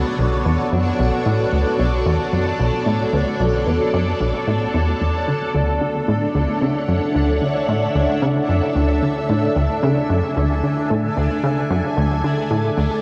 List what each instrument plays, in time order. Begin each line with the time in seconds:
Already playing: string machine B3 F#4 A4 C#5 D5, synth texture D4
0.18 analog synth bass B1
0.45 analog synth bass E2
0.72 analog synth bass F#2
0.99 analog synth bass B1
1.26 analog synth bass A2
1.52 analog synth bass D2
1.79 analog synth bass B1
2.06 analog synth bass E2
2.33 analog synth bass F#2
2.59 analog synth bass B1
2.86 analog synth bass A2
3.13 analog synth bass D2
3.40 analog synth bass B1
3.67 analog synth bass E2
3.93 analog synth bass F#2
4.20 analog synth bass B1
4.47 analog synth bass A2
4.74 analog synth bass E2
5.01 analog synth bass E2
5.27 analog synth bass D3
5.54 analog synth bass D2, synth texture D4, string machine D4
5.81 analog synth bass D3
5.93 string machine C#5
6.08 analog synth bass A2, string machine E5 F#5
6.35 analog synth bass D2
6.61 analog synth bass C#3
6.88 analog synth bass F#2
7.15 analog synth bass D2
7.42 analog synth bass D3
7.68 analog synth bass A2
7.95 analog synth bass D2
8.22 analog synth bass C#3
8.49 analog synth bass F#2
8.75 analog synth bass D2
9.02 analog synth bass D3
9.29 analog synth bass A2
9.56 analog synth bass D2
9.80 analog synth bass C#3, string machine G#5
10.10 analog synth bass F#2
10.36 analog synth bass D2
10.63 analog synth bass D3
10.74 string machine D5
10.90 analog synth bass A2
11.17 analog synth bass D2
11.44 analog synth bass C#3
11.70 analog synth bass F#2
11.97 analog synth bass D2
12.24 analog synth bass D3
12.51 analog synth bass A2
12.77 analog synth bass D2